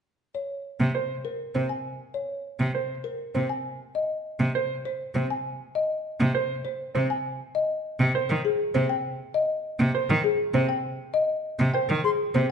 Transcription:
0.35 C#5
0.80 C3
0.95 C5
1.25 A#4
1.55 C3 C4
1.69 G#5
2.14 C#5
2.60 C3
2.75 C5
3.04 A#4
3.35 C3 C4
3.49 G#5
3.95 D#5
4.40 C3
4.55 C5
4.85 C5
5.15 C3 C4
5.30 G#5
5.75 D#5
6.20 C3
6.35 C5
6.65 C5
6.95 C3 C4
7.10 G#5
7.55 D#5
8.00 C3
8.15 C5
8.30 D#3
8.45 G#4
8.74 C3 C4
8.89 G5
9.34 D#5
9.79 C3
9.95 C5
10.10 D#3
10.24 G#4
10.54 C3 C4
10.69 G5
11.14 D#5
11.59 C3
11.74 C5 G5
11.89 D#3
12.04 G#4 C6
12.35 C3 C4

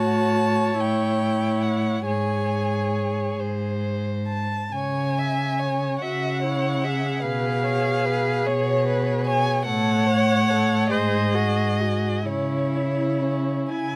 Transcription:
Already playing: A2 F#4 C#5 A5
0.79 A2 E4 G5
1.62 F#5
2.06 G#2 G#4 C#5 G#5
3.39 G#2 C5
4.28 A5
4.73 C#3 C#5 G#5
5.18 E5
5.59 C#5
6.00 C#3 F#4 E5 F#5
6.42 E4 C#5
6.84 G#4 E5
7.23 B2 B4 F5
7.64 C#5
8.05 B4
8.46 B2 C#5
8.88 B4
9.27 C#5 G#5
9.65 A2 A4 C#5 F#5
10.07 C#5
10.50 A4
10.90 G#2 G#4 C5 D#5
11.34 F#4 G#4
11.81 F#4 G#4
12.26 C#3 C#4 E4 C#5
12.77 E4
13.23 C#4
13.69 C#3 E4 G#5

